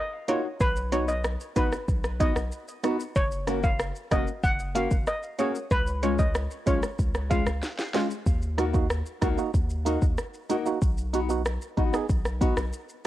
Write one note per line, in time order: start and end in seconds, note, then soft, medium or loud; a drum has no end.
0.28 0.45 A#3 medium
0.28 0.41 A#3 medium
0.28 0.42 D#4 medium
0.28 0.46 D#4 medium
0.28 0.42 F4 medium
0.28 0.46 F#4 medium
0.28 0.39 C#5 medium
0.28 closed hi-hat medium
0.61 1.36 B1 loud
0.61 0.71 B4 loud
0.61 kick loud
0.61 shaker medium
0.76 shaker medium
0.92 1.09 B3 medium
0.92 1.05 B3 medium
0.92 1.05 D#4 medium
0.92 1.10 D#4 medium
0.92 1.06 F#4 medium
0.92 1.10 F#4 medium
0.92 1.02 C#5 medium
0.92 closed hi-hat medium
0.92 shaker soft
1.08 1.18 D#5 medium
1.08 shaker medium
1.24 cross-stick loud
1.24 shaker medium
1.40 shaker soft
1.56 1.71 A#1 medium
1.56 1.73 B3 medium
1.56 1.69 B3 medium
1.56 1.69 D#4 medium
1.56 1.73 D#4 medium
1.56 1.70 F#4 medium
1.56 1.74 F#4 loud
1.56 1.67 B4 medium
1.56 kick medium
1.56 closed hi-hat medium
1.56 shaker medium
1.72 cross-stick medium
1.72 shaker medium
1.88 2.31 B1 medium
1.88 kick loud
1.88 shaker medium
2.04 cross-stick medium
2.04 shaker soft
2.20 2.33 B3 medium
2.20 2.37 B3 medium
2.20 2.33 D#4 medium
2.20 2.37 D#4 medium
2.20 2.33 F#4 medium
2.20 2.38 F#4 medium
2.20 2.30 D#5 medium
2.20 kick loud
2.20 closed hi-hat medium
2.20 shaker medium
2.36 2.50 B1 medium
2.36 cross-stick loud
2.36 shaker medium
2.52 shaker medium
2.68 shaker soft
2.83 2.96 B3 medium
2.83 3.01 B3 medium
2.83 2.97 D#4 medium
2.83 3.01 D#4 medium
2.83 2.97 F#4 loud
2.83 3.01 F#4 medium
2.83 cross-stick medium
2.83 closed hi-hat medium
2.83 shaker medium
3.00 shaker medium
3.16 3.92 F#1 loud
3.16 3.26 C#5 loud
3.16 kick loud
3.16 shaker medium
3.31 shaker medium
3.47 3.60 A#3 medium
3.47 3.64 A#3 medium
3.47 3.61 C#4 medium
3.47 3.65 C#4 medium
3.47 3.61 F#4 medium
3.47 3.65 F#4 medium
3.47 cross-stick medium
3.47 closed hi-hat medium
3.47 shaker soft
3.64 3.74 F5 medium
3.64 kick loud
3.64 shaker medium
3.79 cross-stick loud
3.79 shaker medium
3.96 shaker soft
4.11 4.26 F1 medium
4.11 4.24 A#3 medium
4.11 4.28 A#3 medium
4.11 4.24 C#4 medium
4.11 4.29 C#4 medium
4.11 4.25 F#4 medium
4.11 4.29 F#4 medium
4.11 4.22 D#5 medium
4.11 kick medium
4.11 cross-stick medium
4.11 closed hi-hat medium
4.11 shaker medium
4.28 shaker medium
4.43 4.86 F#1 loud
4.43 4.54 F#5 medium
4.43 kick loud
4.43 shaker medium
4.59 shaker soft
4.75 4.92 A#3 medium
4.75 4.88 A#3 medium
4.75 4.88 C#4 medium
4.75 4.92 C#4 loud
4.75 4.89 F#4 medium
4.75 4.93 F#4 loud
4.75 4.85 F5 medium
4.75 closed hi-hat medium
4.75 shaker medium
4.91 5.06 F#1 medium
4.91 kick loud
4.91 shaker medium
5.07 5.17 D#5 medium
5.07 cross-stick medium
5.07 shaker medium
5.23 shaker soft
5.39 5.52 A#3 medium
5.39 5.56 A#3 medium
5.39 5.52 C#4 medium
5.39 5.56 C#4 medium
5.39 5.57 F#4 loud
5.39 5.52 G#4 medium
5.39 5.49 C#5 medium
5.39 closed hi-hat medium
5.39 shaker medium
5.55 shaker medium
5.71 6.47 C#2 loud
5.71 5.81 B4 loud
5.71 kick loud
5.71 shaker medium
5.87 shaker medium
6.02 6.16 G#3 medium
6.02 6.20 G#3 medium
6.02 6.16 C#4 medium
6.02 6.20 C#4 medium
6.02 6.16 F4 medium
6.02 6.20 F4 medium
6.02 6.13 C#5 medium
6.02 closed hi-hat medium
6.02 shaker soft
6.19 6.29 D#5 medium
6.19 kick loud
6.19 shaker medium
6.35 cross-stick loud
6.35 shaker medium
6.51 shaker soft
6.66 6.81 B1 medium
6.66 6.79 G#3 medium
6.66 6.84 G#3 medium
6.66 6.80 C#4 medium
6.66 6.84 C#4 medium
6.66 6.80 F4 medium
6.66 6.84 F4 medium
6.66 6.77 C#5 medium
6.66 kick medium
6.66 closed hi-hat medium
6.66 shaker medium
6.83 cross-stick medium
6.83 shaker medium
6.99 7.42 C#2 loud
6.99 kick medium
6.99 shaker medium
7.15 cross-stick medium
7.15 shaker soft
7.30 7.43 G#3 medium
7.30 7.47 G#3 medium
7.30 7.43 C#4 medium
7.30 7.48 C#4 medium
7.30 7.44 F4 medium
7.30 7.48 F4 medium
7.30 7.41 F5 medium
7.30 kick loud
7.30 closed hi-hat medium
7.30 shaker medium
7.46 7.61 C#2 medium
7.46 cross-stick loud
7.46 shaker medium
7.63 snare medium
7.63 shaker medium
7.79 snare medium
7.79 shaker soft
7.94 8.07 G#3 medium
7.94 8.11 G#3 medium
7.94 8.07 C#4 medium
7.94 8.12 C#4 medium
7.94 8.08 F4 loud
7.94 8.12 F4 loud
7.94 snare medium
7.94 closed hi-hat medium
7.94 shaker medium
8.11 shaker medium
8.26 9.02 D#2 loud
8.26 kick loud
8.26 shaker medium
8.42 shaker medium
8.58 8.75 A#3 medium
8.58 8.64 D#4 medium
8.58 8.76 D#4 medium
8.58 8.65 F#4 loud
8.58 8.76 F#4 medium
8.58 cross-stick medium
8.58 closed hi-hat medium
8.58 shaker soft
8.73 8.87 A#3 medium
8.73 8.87 D#4 medium
8.73 8.88 F#4 medium
8.73 kick loud
8.73 shaker medium
8.90 cross-stick loud
8.90 shaker medium
9.06 shaker soft
9.22 9.37 C#2 loud
9.22 9.39 A#3 medium
9.22 9.28 D#4 medium
9.22 9.39 D#4 medium
9.22 9.29 F#4 medium
9.22 9.40 F#4 medium
9.22 kick medium
9.22 cross-stick medium
9.22 closed hi-hat medium
9.22 shaker medium
9.38 9.51 A#3 medium
9.38 9.51 D#4 medium
9.38 9.51 F#4 medium
9.38 shaker medium
9.54 9.97 D#2 medium
9.54 kick medium
9.54 shaker medium
9.70 shaker soft
9.85 9.98 A#3 medium
9.85 10.03 A#3 medium
9.85 9.99 D#4 medium
9.85 10.03 D#4 medium
9.85 9.99 F#4 loud
9.85 10.04 F#4 loud
9.85 closed hi-hat medium
9.85 shaker medium
10.02 10.16 D#2 medium
10.02 kick loud
10.02 shaker medium
10.18 cross-stick medium
10.18 shaker medium
10.34 shaker soft
10.49 10.66 A#3 medium
10.49 10.56 D#4 medium
10.49 10.67 D#4 medium
10.49 10.57 F#4 loud
10.49 10.67 F#4 loud
10.49 closed hi-hat medium
10.49 shaker medium
10.66 10.79 A#3 medium
10.66 10.79 D#4 medium
10.66 10.79 F#4 loud
10.66 shaker medium
10.82 11.58 B1 loud
10.82 kick loud
10.82 shaker medium
10.98 shaker medium
11.13 11.30 B3 medium
11.13 11.20 D#4 medium
11.13 11.31 D#4 medium
11.13 11.31 F#4 medium
11.13 11.21 F#4 loud
11.13 closed hi-hat medium
11.13 shaker soft
11.29 11.42 B3 medium
11.29 11.43 D#4 medium
11.29 11.43 F#4 medium
11.29 shaker medium
11.46 cross-stick loud
11.46 shaker medium
11.62 shaker medium
11.77 11.92 A#1 medium
11.77 11.94 B3 medium
11.77 11.84 D#4 medium
11.77 11.95 D#4 medium
11.77 11.84 F#4 medium
11.77 11.95 F#4 loud
11.77 kick medium
11.77 closed hi-hat medium
11.77 shaker medium
11.93 12.06 B3 medium
11.93 12.06 D#4 medium
11.93 12.07 G#4 loud
11.93 cross-stick medium
11.93 shaker medium
12.10 12.53 B1 loud
12.10 kick medium
12.10 shaker medium
12.25 cross-stick medium
12.25 shaker soft
12.41 12.58 B3 medium
12.41 12.54 B3 medium
12.41 12.54 D#4 medium
12.41 12.58 D#4 loud
12.41 12.55 F#4 loud
12.41 12.59 F#4 loud
12.41 kick loud
12.41 closed hi-hat medium
12.41 shaker medium
12.57 12.72 B1 medium
12.57 cross-stick loud
12.57 shaker medium
12.73 shaker medium
12.89 shaker soft